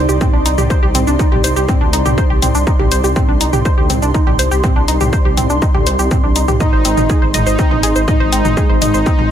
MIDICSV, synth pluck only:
0, 0, Header, 1, 2, 480
1, 0, Start_track
1, 0, Key_signature, -3, "minor"
1, 0, Tempo, 491803
1, 685, Time_signature, 4, 2, 24, 8
1, 9089, End_track
2, 0, Start_track
2, 0, Title_t, "Synth pluck"
2, 0, Program_c, 0, 84
2, 85, Note_on_c, 0, 67, 76
2, 125, Note_off_c, 0, 67, 0
2, 205, Note_on_c, 0, 60, 80
2, 271, Note_off_c, 0, 60, 0
2, 326, Note_on_c, 0, 62, 77
2, 390, Note_off_c, 0, 62, 0
2, 445, Note_on_c, 0, 63, 76
2, 544, Note_off_c, 0, 63, 0
2, 566, Note_on_c, 0, 67, 75
2, 631, Note_off_c, 0, 67, 0
2, 685, Note_on_c, 0, 72, 83
2, 751, Note_off_c, 0, 72, 0
2, 807, Note_on_c, 0, 67, 78
2, 845, Note_off_c, 0, 67, 0
2, 925, Note_on_c, 0, 60, 75
2, 991, Note_off_c, 0, 60, 0
2, 1046, Note_on_c, 0, 62, 78
2, 1111, Note_off_c, 0, 62, 0
2, 1166, Note_on_c, 0, 63, 80
2, 1264, Note_off_c, 0, 63, 0
2, 1287, Note_on_c, 0, 67, 74
2, 1351, Note_off_c, 0, 67, 0
2, 1405, Note_on_c, 0, 72, 75
2, 1471, Note_off_c, 0, 72, 0
2, 1526, Note_on_c, 0, 67, 77
2, 1565, Note_off_c, 0, 67, 0
2, 1645, Note_on_c, 0, 60, 80
2, 1710, Note_off_c, 0, 60, 0
2, 1766, Note_on_c, 0, 62, 74
2, 1830, Note_off_c, 0, 62, 0
2, 1885, Note_on_c, 0, 63, 77
2, 1983, Note_off_c, 0, 63, 0
2, 2006, Note_on_c, 0, 67, 80
2, 2070, Note_off_c, 0, 67, 0
2, 2125, Note_on_c, 0, 72, 82
2, 2191, Note_off_c, 0, 72, 0
2, 2246, Note_on_c, 0, 67, 78
2, 2285, Note_off_c, 0, 67, 0
2, 2366, Note_on_c, 0, 60, 77
2, 2431, Note_off_c, 0, 60, 0
2, 2487, Note_on_c, 0, 62, 77
2, 2551, Note_off_c, 0, 62, 0
2, 2606, Note_on_c, 0, 63, 81
2, 2704, Note_off_c, 0, 63, 0
2, 2727, Note_on_c, 0, 67, 75
2, 2791, Note_off_c, 0, 67, 0
2, 2845, Note_on_c, 0, 72, 78
2, 2911, Note_off_c, 0, 72, 0
2, 2966, Note_on_c, 0, 67, 75
2, 3005, Note_off_c, 0, 67, 0
2, 3085, Note_on_c, 0, 60, 84
2, 3151, Note_off_c, 0, 60, 0
2, 3206, Note_on_c, 0, 62, 77
2, 3271, Note_off_c, 0, 62, 0
2, 3325, Note_on_c, 0, 63, 73
2, 3423, Note_off_c, 0, 63, 0
2, 3446, Note_on_c, 0, 67, 77
2, 3510, Note_off_c, 0, 67, 0
2, 3565, Note_on_c, 0, 72, 84
2, 3631, Note_off_c, 0, 72, 0
2, 3686, Note_on_c, 0, 67, 76
2, 3725, Note_off_c, 0, 67, 0
2, 3804, Note_on_c, 0, 60, 75
2, 3870, Note_off_c, 0, 60, 0
2, 3926, Note_on_c, 0, 62, 76
2, 3991, Note_off_c, 0, 62, 0
2, 4044, Note_on_c, 0, 63, 83
2, 4143, Note_off_c, 0, 63, 0
2, 4166, Note_on_c, 0, 67, 76
2, 4230, Note_off_c, 0, 67, 0
2, 4285, Note_on_c, 0, 72, 76
2, 4351, Note_off_c, 0, 72, 0
2, 4406, Note_on_c, 0, 67, 75
2, 4445, Note_off_c, 0, 67, 0
2, 4524, Note_on_c, 0, 60, 83
2, 4590, Note_off_c, 0, 60, 0
2, 4646, Note_on_c, 0, 62, 78
2, 4711, Note_off_c, 0, 62, 0
2, 4764, Note_on_c, 0, 63, 79
2, 4863, Note_off_c, 0, 63, 0
2, 4887, Note_on_c, 0, 67, 77
2, 4951, Note_off_c, 0, 67, 0
2, 5004, Note_on_c, 0, 72, 82
2, 5070, Note_off_c, 0, 72, 0
2, 5126, Note_on_c, 0, 67, 77
2, 5165, Note_off_c, 0, 67, 0
2, 5245, Note_on_c, 0, 60, 77
2, 5311, Note_off_c, 0, 60, 0
2, 5366, Note_on_c, 0, 62, 76
2, 5431, Note_off_c, 0, 62, 0
2, 5486, Note_on_c, 0, 63, 82
2, 5584, Note_off_c, 0, 63, 0
2, 5607, Note_on_c, 0, 67, 77
2, 5671, Note_off_c, 0, 67, 0
2, 5726, Note_on_c, 0, 72, 79
2, 5791, Note_off_c, 0, 72, 0
2, 5847, Note_on_c, 0, 67, 79
2, 5885, Note_off_c, 0, 67, 0
2, 5965, Note_on_c, 0, 60, 80
2, 6031, Note_off_c, 0, 60, 0
2, 6086, Note_on_c, 0, 62, 75
2, 6151, Note_off_c, 0, 62, 0
2, 6205, Note_on_c, 0, 63, 76
2, 6304, Note_off_c, 0, 63, 0
2, 6327, Note_on_c, 0, 67, 74
2, 6391, Note_off_c, 0, 67, 0
2, 6446, Note_on_c, 0, 75, 79
2, 6511, Note_off_c, 0, 75, 0
2, 6567, Note_on_c, 0, 72, 77
2, 6605, Note_off_c, 0, 72, 0
2, 6685, Note_on_c, 0, 60, 78
2, 6751, Note_off_c, 0, 60, 0
2, 6807, Note_on_c, 0, 63, 77
2, 6871, Note_off_c, 0, 63, 0
2, 6925, Note_on_c, 0, 68, 83
2, 7023, Note_off_c, 0, 68, 0
2, 7047, Note_on_c, 0, 72, 77
2, 7111, Note_off_c, 0, 72, 0
2, 7165, Note_on_c, 0, 75, 74
2, 7231, Note_off_c, 0, 75, 0
2, 7286, Note_on_c, 0, 72, 78
2, 7325, Note_off_c, 0, 72, 0
2, 7405, Note_on_c, 0, 60, 83
2, 7471, Note_off_c, 0, 60, 0
2, 7526, Note_on_c, 0, 63, 77
2, 7590, Note_off_c, 0, 63, 0
2, 7644, Note_on_c, 0, 68, 76
2, 7743, Note_off_c, 0, 68, 0
2, 7766, Note_on_c, 0, 72, 76
2, 7830, Note_off_c, 0, 72, 0
2, 7883, Note_on_c, 0, 75, 81
2, 7950, Note_off_c, 0, 75, 0
2, 8005, Note_on_c, 0, 72, 78
2, 8044, Note_off_c, 0, 72, 0
2, 8124, Note_on_c, 0, 60, 78
2, 8190, Note_off_c, 0, 60, 0
2, 8246, Note_on_c, 0, 63, 74
2, 8311, Note_off_c, 0, 63, 0
2, 8365, Note_on_c, 0, 68, 80
2, 8463, Note_off_c, 0, 68, 0
2, 8486, Note_on_c, 0, 72, 77
2, 8550, Note_off_c, 0, 72, 0
2, 8604, Note_on_c, 0, 75, 75
2, 8670, Note_off_c, 0, 75, 0
2, 8726, Note_on_c, 0, 72, 77
2, 8765, Note_off_c, 0, 72, 0
2, 8845, Note_on_c, 0, 60, 85
2, 8911, Note_off_c, 0, 60, 0
2, 8966, Note_on_c, 0, 63, 76
2, 9030, Note_off_c, 0, 63, 0
2, 9089, End_track
0, 0, End_of_file